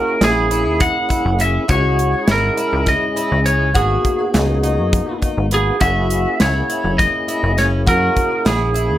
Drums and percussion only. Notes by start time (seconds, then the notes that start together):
0.21 snare, closed hi-hat
0.51 closed hi-hat
0.80 kick, closed hi-hat
1.10 kick, closed hi-hat
1.40 closed hi-hat
1.69 kick, closed hi-hat
1.99 closed hi-hat
2.28 snare, closed hi-hat
2.57 closed hi-hat
2.86 kick, snare, closed hi-hat
3.17 closed hi-hat
3.46 closed hi-hat
3.75 kick, closed hi-hat
4.05 kick, closed hi-hat
4.34 snare, closed hi-hat
4.63 closed hi-hat
4.93 kick, closed hi-hat
5.22 kick, closed hi-hat
5.51 closed hi-hat
5.81 kick, closed hi-hat
6.10 closed hi-hat
6.40 snare, closed hi-hat
6.70 closed hi-hat
6.99 kick, snare, closed hi-hat
7.28 closed hi-hat
7.58 snare, closed hi-hat
7.87 kick, closed hi-hat
8.16 kick, closed hi-hat
8.46 snare, closed hi-hat
8.76 closed hi-hat